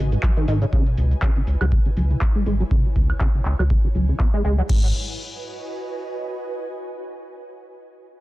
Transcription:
Already playing: F#4 B4 D#5 G#5
0.00 G#1
0.12 G#2, closed hi-hat, shaker
0.23 F#3, kick, clap, closed hi-hat, shaker
0.37 D#3, closed hi-hat
0.48 G#2 D#3, open hi-hat, shaker
0.62 C#3, closed hi-hat, shaker
0.73 C#3 E4, kick, closed hi-hat, shaker
0.87 B2, closed hi-hat
0.97 C#2, open hi-hat, shaker
1.11 B3, closed hi-hat, shaker
1.22 C#3, kick, clap, closed hi-hat, shaker
1.36 C#3, closed hi-hat
1.47 C#2, open hi-hat, shaker
1.61 C#2 F#3, closed hi-hat, high woodblock, shaker
1.72 C#3, kick, closed hi-hat, shaker
1.85 C#3 C#5, closed hi-hat
1.97 C#2 F#3, open hi-hat, shaker
2.11 C#3, closed hi-hat, shaker
2.21 B3, kick, clap, closed hi-hat, shaker
2.35 G#3, closed hi-hat
2.46 G#1 G#3, open hi-hat, shaker
2.60 F#3, closed hi-hat, shaker
2.71 C#3, kick, closed hi-hat, shaker
2.85 B2, closed hi-hat
2.96 C#2, kick, open hi-hat, shaker
3.10 B3, closed hi-hat, high woodblock, shaker
3.21 C#3, kick, clap, closed hi-hat
3.34 C#3, open hi-hat
3.45 C#2, clap, open hi-hat, shaker
3.59 C#2 F#3, closed hi-hat, high woodblock, shaker
3.70 C#3, kick
3.84 C#3, closed hi-hat
3.95 C#2 F#3, open hi-hat, shaker
4.09 C#3, closed hi-hat, shaker
4.20 B3, kick, clap
4.34 G#3, closed hi-hat
4.45 C#2 G#3, open hi-hat, shaker
4.58 F#3, closed hi-hat, shaker
4.69 G#1 G#2 F#4, kick, crash
4.78 B4
4.85 D#5
4.92 G#5

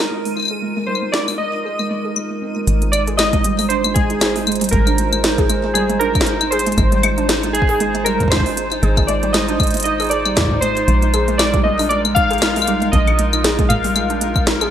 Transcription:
Already playing: G#3 D#4 F4 A#4 D#7
0.00 D4
0.11 G#3
0.25 G#3, open hi-hat
0.37 D#4, claves
0.40 claves
0.42 claves
0.45 claves
0.48 G#4, claves
0.62 G#3
0.77 G#3
0.87 G3 C5
0.95 claves
1.02 G#3
1.12 D4 D5, snare
1.28 G#3, open hi-hat, claves
1.38 G#3 D#5
1.54 D#4
1.65 G#4
1.79 G#3, claves
1.91 G#3
2.05 G#4
2.16 G#3, claves
2.31 G#3
2.42 C4
2.56 G#3
2.67 G#1 G#3 D#4 F4 C5, closed hi-hat
2.82 G#3, closed hi-hat
2.92 D#4 D5, closed hi-hat, claves
3.07 G#4, closed hi-hat
3.17 G#3 D#5, snare, closed hi-hat, claves
3.33 G#3, kick, closed hi-hat
3.44 G3, closed hi-hat
3.59 G#3, open hi-hat, claves
3.69 D4 C5, closed hi-hat
3.84 G#3, closed hi-hat, claves
3.94 G#3 G#4, kick, closed hi-hat
4.10 D#4, closed hi-hat
4.21 G#4, snare, closed hi-hat, claves
4.36 G#3, open hi-hat
4.47 G#3, closed hi-hat, claves
4.52 closed hi-hat
4.56 closed hi-hat
4.61 G3, closed hi-hat
4.64 closed hi-hat
4.69 A#4, closed hi-hat
4.73 G#1 G#3, kick, closed hi-hat
4.87 D4, closed hi-hat, claves
4.98 G#3, closed hi-hat
5.13 G#3, closed hi-hat, claves
5.24 D#4, snare, closed hi-hat
5.38 G#4, kick, closed hi-hat
5.50 G#3, closed hi-hat, claves
5.64 G#3
5.74 G3 G#4, closed hi-hat, claves
5.90 G#3, closed hi-hat
5.99 D4 A#4, closed hi-hat
6.15 G#3, kick, closed hi-hat, claves
6.21 snare
6.26 G#3, closed hi-hat
6.41 D#4, closed hi-hat, claves
6.51 G#4 C5, closed hi-hat
6.59 closed hi-hat
6.66 G#3, closed hi-hat
6.72 closed hi-hat
6.78 G#1 G#3, kick, closed hi-hat, claves
6.92 G3, closed hi-hat
7.03 G#3, closed hi-hat, claves
7.18 D4, closed hi-hat
7.29 G#3, snare, closed hi-hat
7.43 G#3, closed hi-hat
7.53 D#4 G#4, closed hi-hat
7.62 kick
7.69 G#4, open hi-hat
7.80 G#3, closed hi-hat
7.95 G#3, closed hi-hat
8.04 G3 A#4, closed hi-hat, claves
8.20 G#3, kick, closed hi-hat
8.23 kick
8.28 C5, kick
8.32 D4, kick, snare, closed hi-hat, claves
8.36 kick
8.40 kick
8.46 G#3, open hi-hat
8.57 G#3, closed hi-hat
8.72 D#4, closed hi-hat, claves
8.83 G#1 G#4, closed hi-hat
8.97 G#3, kick, closed hi-hat, claves
9.07 G#3 D5, closed hi-hat
9.23 G3, closed hi-hat
9.33 G#3 D#5, snare, closed hi-hat, claves
9.49 D4, closed hi-hat
9.60 G#3, kick, closed hi-hat, claves
9.63 closed hi-hat
9.67 closed hi-hat
9.71 closed hi-hat
9.74 G#3, closed hi-hat, open hi-hat
9.77 closed hi-hat
9.80 closed hi-hat
9.83 D#5, closed hi-hat
9.85 D#4, closed hi-hat
10.00 G#4, closed hi-hat, claves
10.02 closed hi-hat
10.04 closed hi-hat
10.07 closed hi-hat
10.09 D5, closed hi-hat
10.11 G#4, closed hi-hat
10.25 G3, closed hi-hat, claves
10.37 G#3, kick, snare, closed hi-hat
10.40 kick
10.44 kick
10.47 kick
10.51 G#2, kick
10.54 kick
10.57 kick
10.60 G#3 C5, kick, closed hi-hat
10.77 D#4, closed hi-hat
10.88 A#1 G#3 A#4, closed hi-hat
11.02 D#4, closed hi-hat
11.14 G#4, closed hi-hat, claves
11.28 G#3, closed hi-hat
11.38 G#3 D5, snare, closed hi-hat, claves
11.54 G3, kick, closed hi-hat
11.63 G#3 D#5
11.79 D4, open hi-hat, claves
11.89 G#3 D5, closed hi-hat
12.05 G#3, closed hi-hat, claves
12.15 D#4 F5, kick, closed hi-hat
12.31 G#4, closed hi-hat
12.33 closed hi-hat
12.38 snare, closed hi-hat
12.42 G#3, closed hi-hat, claves
12.56 G#3, open hi-hat
12.62 claves
12.67 G3, closed hi-hat
12.82 G#3, closed hi-hat
12.92 A#1 D4 D#5, kick, closed hi-hat
13.07 G#3, closed hi-hat, claves
13.19 G#3, closed hi-hat
13.33 D#4, closed hi-hat, claves
13.44 G#4, snare, closed hi-hat
13.59 G#3, kick, closed hi-hat
13.69 G#3 F5, closed hi-hat, mid tom, claves
13.84 G3, open hi-hat
13.96 G#3, closed hi-hat, claves
14.10 D4, closed hi-hat
14.21 G#3, closed hi-hat
14.36 G#3, kick, closed hi-hat, claves
14.47 D#4, snare, closed hi-hat
14.61 G#4, closed hi-hat, claves

